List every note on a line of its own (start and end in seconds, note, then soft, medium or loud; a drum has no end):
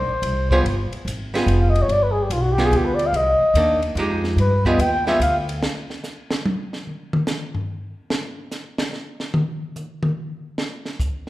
0.00 0.51 C5 medium
0.08 0.21 A#1 medium
0.22 0.63 C2 medium
0.22 ride medium
0.51 0.64 G3 medium
0.51 0.64 B3 medium
0.51 0.64 F4 medium
0.51 0.65 G#4 medium
0.51 0.60 C5 medium
0.51 kick medium
0.64 0.90 G1 medium
0.64 ride medium
0.91 muted upright bass stroke soft
0.91 ride soft
1.05 1.46 G#1 medium
1.05 hi-hat pedal medium
1.05 ride medium
1.34 1.87 G3 medium
1.34 1.87 B3 medium
1.34 1.87 F4 medium
1.34 1.87 G#4 medium
1.34 snare medium
1.34 ride soft
1.46 1.87 F1 loud
1.46 ride medium
1.60 1.71 F5 medium
1.70 1.84 D#5 loud
1.75 ride medium
1.82 1.93 C#5 medium
1.88 2.29 G1 medium
1.88 2.04 D5 medium
1.88 ride medium
2.03 2.13 B4 medium
2.11 2.24 G#4 medium
2.23 2.34 G4 medium
2.30 2.71 B1 medium
2.30 2.43 F4 medium
2.30 hi-hat pedal medium
2.30 ride medium
2.41 2.54 F#4 medium
2.52 2.67 G4 loud
2.58 3.11 G3 medium
2.58 3.11 B3 medium
2.58 3.12 F4 medium
2.58 3.12 G#4 medium
2.58 snare medium
2.65 2.78 G#4 loud
2.71 3.12 D2 loud
2.71 ride medium
2.76 2.86 G4 medium
2.85 2.96 B4 medium
2.95 3.08 D5 loud
2.99 ride medium
3.07 3.18 F5 loud
3.13 3.38 C2 medium
3.13 3.84 D#5 medium
3.13 ride medium
3.40 muted upright bass stroke soft
3.54 3.95 D#2 medium
3.54 3.80 D#3 medium
3.54 3.80 A#3 medium
3.54 3.81 D4 medium
3.54 hi-hat pedal soft
3.54 ride medium
3.82 ride medium
3.95 4.36 F2 loud
3.95 4.38 F3 medium
3.95 4.39 G#3 medium
3.95 4.39 D#4 medium
3.95 ride medium
4.00 4.39 G4 medium
4.24 snare soft
4.36 4.77 G2 medium
4.36 ride medium
4.40 4.64 B4 medium
4.65 4.78 G3 medium
4.65 4.78 B3 medium
4.65 4.79 F4 medium
4.65 4.79 G#4 medium
4.65 4.82 D#5 loud
4.65 kick medium
4.78 5.19 D#2 medium
4.78 5.07 G5 loud
4.78 hi-hat pedal medium
4.78 ride medium
5.07 5.20 G3 medium
5.07 5.20 B3 medium
5.07 5.20 F4 medium
5.07 5.20 G#4 medium
5.07 5.20 E5 medium
5.07 snare soft
5.20 5.60 D2 loud
5.20 5.38 F5 medium
5.20 hi-hat pedal medium
5.20 ride medium
5.49 ride medium
5.63 snare loud
5.90 snare soft
6.04 snare soft
6.04 hi-hat pedal medium
6.31 snare medium
6.46 high tom loud
6.73 snare soft
6.87 mid tom soft
7.13 mid tom loud
7.27 snare medium
7.27 hi-hat pedal soft
7.55 floor tom medium
8.10 snare loud
8.51 snare soft
8.51 hi-hat pedal medium
8.78 snare loud
8.93 snare soft
9.20 snare medium
9.34 mid tom loud
9.76 hi-hat pedal medium
9.76 mid tom soft
10.03 mid tom medium
10.58 snare medium
10.85 snare soft
11.00 kick medium
11.00 hi-hat pedal medium